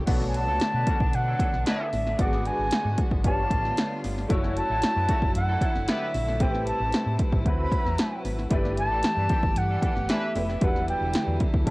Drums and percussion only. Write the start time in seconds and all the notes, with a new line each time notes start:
0.07 kick, closed hi-hat, crash
0.22 snare
0.34 closed hi-hat
0.60 snare, closed hi-hat
0.87 kick, closed hi-hat
1.00 kick
1.13 closed hi-hat
1.39 kick, closed hi-hat
1.54 snare
1.66 snare, closed hi-hat
1.93 snare, open hi-hat
2.07 snare
2.19 kick, closed hi-hat
2.33 snare
2.46 closed hi-hat
2.71 snare, closed hi-hat
2.98 kick, closed hi-hat
3.11 kick
3.24 kick, closed hi-hat
3.51 kick, closed hi-hat
3.65 snare
3.77 snare, closed hi-hat
4.04 snare, open hi-hat
4.18 snare
4.30 kick, closed hi-hat
4.44 snare
4.57 closed hi-hat
4.82 snare, closed hi-hat
5.09 kick, closed hi-hat
5.22 kick
5.35 closed hi-hat
5.61 kick, closed hi-hat
5.75 snare
5.88 snare, closed hi-hat
6.14 snare, open hi-hat
6.28 snare
6.40 kick, closed hi-hat
6.55 snare
6.67 closed hi-hat
6.93 snare, closed hi-hat
7.19 kick, closed hi-hat
7.33 kick
7.46 kick, closed hi-hat
7.72 kick, closed hi-hat
7.86 snare
7.98 snare, closed hi-hat
8.25 snare, open hi-hat
8.39 snare
8.51 kick, closed hi-hat
8.65 snare
8.78 closed hi-hat
9.03 snare, closed hi-hat
9.29 kick, closed hi-hat
9.43 kick
9.56 closed hi-hat
9.82 kick, closed hi-hat
9.96 snare
10.09 snare, closed hi-hat
10.35 snare, open hi-hat
10.49 snare
10.61 kick, closed hi-hat
10.76 snare
10.88 closed hi-hat
11.13 snare, closed hi-hat
11.40 kick, closed hi-hat
11.54 kick
11.67 kick, closed hi-hat